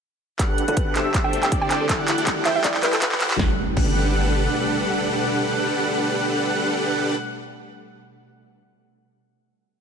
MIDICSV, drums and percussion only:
0, 0, Header, 1, 2, 480
1, 0, Start_track
1, 0, Key_signature, 1, "major"
1, 0, Tempo, 375000
1, 503, Time_signature, 4, 2, 24, 8
1, 12552, End_track
2, 0, Start_track
2, 0, Title_t, "Drums"
2, 504, Note_on_c, 9, 36, 87
2, 504, Note_on_c, 9, 39, 46
2, 504, Note_on_c, 9, 42, 78
2, 632, Note_off_c, 9, 36, 0
2, 632, Note_off_c, 9, 39, 0
2, 632, Note_off_c, 9, 42, 0
2, 743, Note_on_c, 9, 42, 67
2, 871, Note_off_c, 9, 42, 0
2, 871, Note_on_c, 9, 42, 66
2, 983, Note_off_c, 9, 42, 0
2, 983, Note_on_c, 9, 42, 83
2, 984, Note_on_c, 9, 36, 91
2, 1111, Note_off_c, 9, 42, 0
2, 1112, Note_off_c, 9, 36, 0
2, 1223, Note_on_c, 9, 39, 55
2, 1223, Note_on_c, 9, 42, 59
2, 1351, Note_off_c, 9, 39, 0
2, 1351, Note_off_c, 9, 42, 0
2, 1463, Note_on_c, 9, 39, 59
2, 1463, Note_on_c, 9, 42, 81
2, 1465, Note_on_c, 9, 36, 91
2, 1591, Note_off_c, 9, 39, 0
2, 1591, Note_off_c, 9, 42, 0
2, 1593, Note_off_c, 9, 36, 0
2, 1704, Note_on_c, 9, 42, 62
2, 1832, Note_off_c, 9, 42, 0
2, 1832, Note_on_c, 9, 39, 54
2, 1832, Note_on_c, 9, 42, 65
2, 1943, Note_off_c, 9, 42, 0
2, 1943, Note_on_c, 9, 42, 81
2, 1944, Note_on_c, 9, 36, 96
2, 1960, Note_off_c, 9, 39, 0
2, 2071, Note_off_c, 9, 42, 0
2, 2072, Note_off_c, 9, 36, 0
2, 2184, Note_on_c, 9, 39, 63
2, 2184, Note_on_c, 9, 42, 60
2, 2312, Note_off_c, 9, 39, 0
2, 2312, Note_off_c, 9, 42, 0
2, 2424, Note_on_c, 9, 36, 94
2, 2424, Note_on_c, 9, 39, 75
2, 2424, Note_on_c, 9, 42, 80
2, 2552, Note_off_c, 9, 36, 0
2, 2552, Note_off_c, 9, 39, 0
2, 2552, Note_off_c, 9, 42, 0
2, 2663, Note_on_c, 9, 39, 80
2, 2663, Note_on_c, 9, 42, 70
2, 2791, Note_off_c, 9, 39, 0
2, 2791, Note_off_c, 9, 42, 0
2, 2791, Note_on_c, 9, 42, 65
2, 2902, Note_off_c, 9, 42, 0
2, 2902, Note_on_c, 9, 39, 88
2, 2902, Note_on_c, 9, 42, 85
2, 2904, Note_on_c, 9, 36, 96
2, 3030, Note_off_c, 9, 39, 0
2, 3030, Note_off_c, 9, 42, 0
2, 3032, Note_off_c, 9, 36, 0
2, 3141, Note_on_c, 9, 39, 86
2, 3141, Note_on_c, 9, 42, 64
2, 3269, Note_off_c, 9, 39, 0
2, 3269, Note_off_c, 9, 42, 0
2, 3382, Note_on_c, 9, 39, 90
2, 3382, Note_on_c, 9, 42, 80
2, 3384, Note_on_c, 9, 36, 97
2, 3510, Note_off_c, 9, 39, 0
2, 3510, Note_off_c, 9, 42, 0
2, 3510, Note_on_c, 9, 39, 82
2, 3512, Note_off_c, 9, 36, 0
2, 3623, Note_off_c, 9, 39, 0
2, 3623, Note_on_c, 9, 39, 96
2, 3623, Note_on_c, 9, 42, 65
2, 3751, Note_off_c, 9, 39, 0
2, 3751, Note_off_c, 9, 42, 0
2, 3751, Note_on_c, 9, 39, 83
2, 3751, Note_on_c, 9, 42, 69
2, 3862, Note_off_c, 9, 39, 0
2, 3862, Note_off_c, 9, 42, 0
2, 3862, Note_on_c, 9, 39, 94
2, 3862, Note_on_c, 9, 42, 80
2, 3864, Note_on_c, 9, 36, 98
2, 3990, Note_off_c, 9, 39, 0
2, 3990, Note_off_c, 9, 42, 0
2, 3991, Note_on_c, 9, 39, 89
2, 3992, Note_off_c, 9, 36, 0
2, 4103, Note_off_c, 9, 39, 0
2, 4103, Note_on_c, 9, 39, 103
2, 4103, Note_on_c, 9, 42, 59
2, 4231, Note_off_c, 9, 39, 0
2, 4231, Note_off_c, 9, 42, 0
2, 4232, Note_on_c, 9, 39, 96
2, 4344, Note_on_c, 9, 36, 111
2, 4344, Note_on_c, 9, 38, 88
2, 4360, Note_off_c, 9, 39, 0
2, 4472, Note_off_c, 9, 36, 0
2, 4472, Note_off_c, 9, 38, 0
2, 4823, Note_on_c, 9, 49, 91
2, 4824, Note_on_c, 9, 36, 111
2, 4951, Note_off_c, 9, 49, 0
2, 4952, Note_off_c, 9, 36, 0
2, 12552, End_track
0, 0, End_of_file